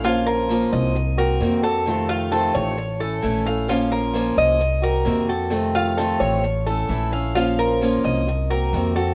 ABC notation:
X:1
M:4/4
L:1/8
Q:1/4=131
K:Bbm
V:1 name="Cuban tres"
F B2 e2 B2 =A- | =A F A d2 A2 f | F B2 e2 B2 =A- | =A F A d2 A2 f |
F B2 e2 B2 =A |]
V:2 name="Steel-string acoustic guitar"
[F,B,DFc]2 [F,B,DFc]2 z [B,CG] [C,E,B,CG] [B,CG] | [C,E,=A,CF]2 [C,E,A,CF]2 z [A,^C=E] [=E,A,CE] [A,CE] | [F,B,DFc]2 [F,B,DFc]2 z [B,CG] [C,E,B,CG] [B,CG] | [C,E,=A,CF]2 [C,E,A,CF]2 z [A,^C=E] [=E,A,CE] [A,CE] |
[F,B,DFc]2 [F,B,DFc]2 z [B,CG] [C,E,B,CG] [B,CG] |]
V:3 name="Upright bass" clef=bass
B,,,3 C,,3 F,,2- | F,,3 =A,,,3 B,,,2- | B,,,3 C,,3 F,,2- | F,,3 =A,,,3 B,,,2- |
B,,,3 C,,3 F,,2 |]